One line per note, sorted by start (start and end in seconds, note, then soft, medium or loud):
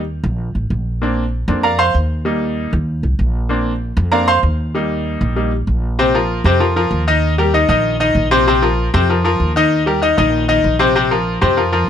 0.00 0.18 D#2 medium
0.24 0.53 A#1 loud
0.55 0.70 A1 medium
0.70 1.43 A#1 medium
1.02 1.22 A#3 medium
1.02 1.23 C4 soft
1.02 1.23 D4 medium
1.48 1.91 F2 loud
1.48 1.62 A#3 soft
1.48 1.62 C4 soft
1.48 1.63 D4 medium
1.63 1.79 A#4 medium
1.63 1.79 D5 medium
1.63 1.77 F5 medium
1.63 1.79 A#5 medium
1.79 1.94 C5 medium
1.79 1.94 F5 medium
1.79 1.94 C6 loud
1.94 2.67 D#2 medium
2.25 2.70 G3 medium
2.25 2.70 A#3 medium
2.25 2.70 D#4 medium
2.73 3.01 D#2 loud
3.03 3.18 C2 medium
3.19 3.91 A#1 medium
3.49 3.70 A#3 medium
3.49 3.71 C4 medium
3.49 3.71 D4 medium
3.97 4.40 F2 loud
4.12 4.26 A#3 medium
4.12 4.26 C4 medium
4.12 4.26 D4 medium
4.12 4.27 A#4 medium
4.12 4.27 D5 medium
4.12 4.26 F5 medium
4.12 4.27 A#5 medium
4.28 4.37 C5 medium
4.28 4.37 F5 medium
4.28 4.37 C6 loud
4.43 5.15 D#2 medium
4.74 5.35 G3 medium
4.74 5.35 A#3 medium
4.74 5.35 D#4 medium
5.21 5.64 A#1 loud
5.36 5.50 G3 medium
5.36 5.50 A#3 soft
5.36 5.51 D#4 medium
5.67 6.39 A#1 medium
5.99 6.11 C3 medium
5.99 6.12 C4 medium
5.99 6.12 C5 medium
6.14 6.40 F3 medium
6.14 6.40 F4 medium
6.14 6.40 A#4 medium
6.44 6.88 F2 loud
6.44 6.58 C3 medium
6.44 6.58 C4 medium
6.44 6.58 C5 medium
6.60 6.73 F3 medium
6.60 6.73 F4 medium
6.60 6.73 A#4 medium
6.76 7.02 F3 medium
6.76 7.02 F4 medium
6.76 7.02 A#4 medium
6.91 7.63 D#2 loud
7.07 7.33 D#3 medium
7.07 7.33 D#4 medium
7.07 7.33 D#5 medium
7.38 7.51 G3 medium
7.38 7.51 G4 medium
7.38 7.51 A#4 medium
7.54 7.66 D#3 medium
7.54 7.67 D#4 medium
7.54 7.67 D#5 medium
7.69 8.12 A#1 loud
7.69 7.95 D#3 medium
7.69 7.95 D#4 medium
7.69 7.95 D#5 medium
8.00 8.26 D#3 medium
8.00 8.26 D#4 medium
8.00 8.26 D#5 loud
8.15 8.87 A#1 medium
8.31 8.44 C3 loud
8.31 8.44 C4 loud
8.31 8.44 C5 medium
8.47 8.60 C3 medium
8.47 8.60 C4 medium
8.47 8.60 C5 medium
8.62 8.88 F3 medium
8.62 8.88 F4 medium
8.62 8.88 A#4 medium
8.94 9.37 F2 loud
8.94 9.06 C3 medium
8.94 9.07 C4 medium
8.94 9.07 C5 loud
9.09 9.22 F3 medium
9.09 9.22 F4 medium
9.09 9.23 A#4 medium
9.24 9.50 F3 medium
9.24 9.50 F4 medium
9.24 9.50 A#4 medium
9.40 10.12 D#2 medium
9.56 9.81 D#3 loud
9.56 9.82 D#4 medium
9.56 9.82 D#5 medium
9.86 9.99 G3 medium
9.86 10.00 G4 medium
9.86 10.00 A#4 medium
10.02 10.15 D#3 medium
10.02 10.15 D#4 medium
10.02 10.15 D#5 medium
10.17 10.61 A#1 loud
10.17 10.43 D#3 medium
10.17 10.43 D#4 medium
10.17 10.43 D#5 medium
10.48 10.74 D#3 medium
10.48 10.74 D#4 medium
10.48 10.74 D#5 medium
10.64 11.36 A#1 medium
10.79 10.92 C3 loud
10.79 10.93 C4 medium
10.79 10.93 C5 medium
10.96 11.08 C3 medium
10.96 11.08 C4 medium
10.96 11.08 C5 medium
11.11 11.36 F3 medium
11.11 11.37 F4 medium
11.11 11.37 A#4 medium
11.41 11.85 F2 loud
11.41 11.54 C3 medium
11.41 11.55 C4 medium
11.41 11.55 C5 medium
11.57 11.70 F3 medium
11.57 11.70 F4 medium
11.57 11.70 A#4 medium
11.72 11.89 F3 medium
11.72 11.89 F4 medium
11.72 11.89 A#4 medium